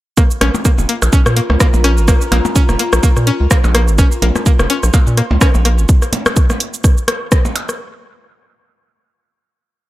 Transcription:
0.17 A#3 F4, kick, cross-stick, shaker
0.31 shaker
0.35 A#4
0.41 A#1 C#4, cross-stick, closed hi-hat, percussion blips
0.55 percussion blips, shaker
0.65 A#3, kick, cross-stick, shaker
0.78 F1, percussion blips, shaker
0.89 A#3, closed hi-hat
0.96 A#5
1.02 A#1, cross-stick, percussion blips, shaker
1.13 C#4, kick, shaker
1.26 A#2, cross-stick, shaker
1.37 A#3, closed hi-hat
1.50 C#2, cross-stick, percussion blips
1.60 A#3, kick, cross-stick, shaker
1.74 A#1, percussion blips, shaker
1.84 C#4, cross-stick, closed hi-hat
1.98 G#1, shaker
2.08 A#3, kick, cross-stick, shaker
2.21 shaker
2.32 A#1 A#3, cross-stick, closed hi-hat, percussion blips
2.45 percussion blips, shaker
2.56 C#4, kick, shaker
2.69 F1, cross-stick, percussion blips, shaker
2.79 A#3, closed hi-hat
2.93 A#1, cross-stick, shaker
3.03 A#3, kick, shaker
3.17 A#2, cross-stick, shaker
3.27 C#4, closed hi-hat
3.40 C#2
3.51 A#3, kick, cross-stick, shaker
3.64 A#1, percussion blips, shaker
3.75 A#3, cross-stick, closed hi-hat
3.88 G#1, shaker
3.97 C#4 C6, kick, cross-stick, shaker
4.12 shaker
4.22 A#1 A#3, closed hi-hat, percussion blips
4.36 cross-stick, percussion blips, shaker
4.46 A#3, kick, shaker
4.59 F1, cross-stick, percussion blips, shaker
4.70 C#4, closed hi-hat
4.83 A#1, cross-stick, shaker
4.94 A#3, kick, percussion blips, shaker
5.07 A#2, shaker
5.17 A#3, cross-stick, closed hi-hat
5.31 C#2, percussion blips
5.41 C#4, kick, cross-stick, shaker
5.55 A#1, percussion blips, shaker
5.65 A#3, cross-stick, closed hi-hat
5.78 G#1, shaker
5.89 kick, shaker
6.02 cross-stick, shaker
6.13 closed hi-hat, percussion blips
6.26 cross-stick, percussion blips, shaker
6.37 kick, shaker
6.50 cross-stick, percussion blips, shaker
6.60 closed hi-hat
6.74 shaker
6.84 kick, cross-stick, shaker
6.98 shaker
7.08 cross-stick, closed hi-hat
7.32 kick, cross-stick, shaker
7.45 percussion blips, shaker
7.56 closed hi-hat, percussion blips
7.69 cross-stick, shaker

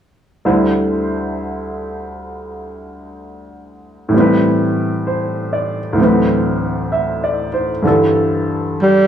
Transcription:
0.45 D2 D3 G3 E4 C5
4.09 A2 E3
4.14 G3 C4
4.20 B4
5.07 C5
5.53 D5
5.93 D2 A2
5.97 E3 F#3
6.01 C4 B4
6.92 E5
7.24 D5
7.54 C5
7.82 G2 D3 E3 G3
7.87 A4
8.82 G3

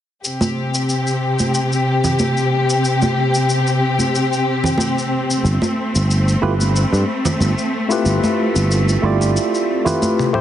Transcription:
0.24 C3 C4 G4, shaker
0.41 high conga, shaker
0.74 shaker
0.89 shaker
1.07 shaker
1.39 high conga, shaker
1.54 shaker
1.72 shaker
2.04 low conga, shaker
2.19 high conga, shaker
2.37 shaker
2.70 shaker
2.85 shaker
3.02 high conga, shaker
3.35 shaker
3.49 shaker
3.67 shaker
3.99 high conga, shaker
4.15 shaker
4.33 shaker
4.64 low conga, shaker
4.78 high conga, shaker
4.98 shaker
5.31 shaker
5.44 G1 A3, shaker
5.62 high conga, shaker
5.95 G1, shaker
6.11 shaker
6.28 shaker
6.42 G1 A3 E4 F4 G4 B4
6.60 high conga, shaker
6.76 shaker
6.92 G2, shaker
7.25 low conga, shaker
7.40 G1, high conga, shaker
7.58 shaker
7.89 A3 E4 F4 G4 B4, shaker
8.05 G1, shaker
8.23 high conga, shaker
8.56 G1, shaker
8.71 shaker
8.89 shaker
9.02 G1 A3 E4 F4 G4 D5
9.21 high conga, shaker
9.37 shaker
9.55 shaker
9.85 A3 E4 F4 G4 B4, low conga, shaker
10.02 high conga, shaker
10.19 high tom, shaker
10.33 A3 C4 E4 G4 C5, mid tom

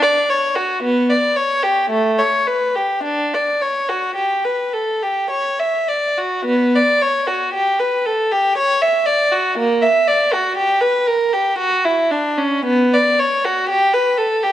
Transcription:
0.03 D5
0.30 C#5
0.56 F#4
0.82 B3
1.10 D5
1.37 C#5
1.63 G4
1.90 A3
2.19 C#5
2.47 B4
2.76 G4
3.03 D4
3.34 D5
3.62 C#5
3.89 F#4
4.15 G4
4.45 B4
4.73 A4
5.03 G4
5.31 C#5
5.60 E5
5.89 D5
6.18 F#4
6.45 B3
6.76 D5
7.02 C#5
7.27 F#4
7.54 G4
7.80 B4
8.06 A4
8.32 G4
8.57 C#5
8.82 E5
9.06 D5
9.32 F#4
9.58 A#3
9.82 E5
10.08 D5
10.33 F#4
10.57 G4
10.81 B4
11.07 A#4
11.33 G4
11.58 F#4
11.86 E4
12.11 D4
12.38 C#4
12.65 B3
12.94 D5
13.19 C#5
13.45 F#4
13.69 G4
13.94 B4
14.18 A4
14.43 G4

